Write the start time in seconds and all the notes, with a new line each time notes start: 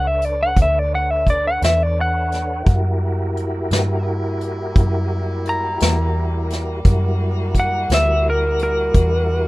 Already playing: C#2 D4 A4 B4 C#5
0.07 E5
0.22 D5, closed hi-hat
0.43 F#5
0.56 D2, kick, closed hi-hat
0.62 E5
0.79 D5
0.95 F#5
1.11 E5
1.27 D5, kick, closed hi-hat
1.47 F#5
1.62 E2 E5, snare, closed hi-hat
1.83 D5
2.01 F#5
2.32 snare, closed hi-hat
2.63 F#2 G3 A#3 E4 F#4 G4 A#4, kick, closed hi-hat
3.37 closed hi-hat
3.71 G2, snare, closed hi-hat
4.41 closed hi-hat
4.76 F#2, kick, closed hi-hat
5.45 A#5, closed hi-hat
5.80 E2, snare, closed hi-hat
6.50 snare, closed hi-hat
6.85 F#2 G3 E4 F#4 A#4, kick, closed hi-hat
7.55 kick, closed hi-hat
7.60 F#5
7.90 D2, snare, closed hi-hat
7.94 E5
8.30 A#4
8.59 A#4, closed hi-hat
8.94 E2, kick, closed hi-hat